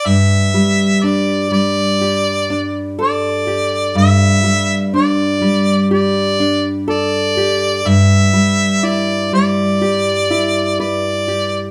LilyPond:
<<
  \new Staff \with { instrumentName = "Harmonica" } { \time 4/4 \key e \minor \tempo 4 = 62 e''4 d''8 d''4. d''4 | e''4 d''4 d''4 d''4 | e''4 d''8 d''4. d''4 | }
  \new Staff \with { instrumentName = "Nylon-string guitar" } { \time 4/4 \key e \minor << { r4 d'4 g'8 d'8 a'8 g'8 | r4 d'4 g'8 d'8 a'8 g'8 | r4 e'4 g'8 e'8 b'8 g'8 | } \\ { g,8 g4 g2~ g8 | g,8 g4 g2~ g8 | g,8 g4 g2~ g8 | } >> }
>>